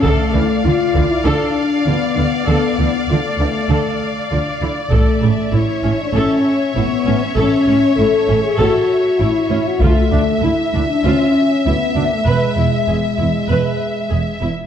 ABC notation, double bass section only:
X:1
M:4/4
L:1/8
Q:1/4=98
K:A
V:1 name="Double bass section" clef=bass
D,, D,, D,, D,, D,, z D,, D,, | D,, D,, D,, D,, D,, z D,, D,, | A,,, A,,, A,,, A,,, A,,, z A,,, A,,, | A,,, A,,, A,,, A,,, A,,, z A,,, A,,, |
D,, D,, D,, D,, D,, z D,, D,, | E,,, E,,, E,,, E,,, E,,, z E,,, E,,, |]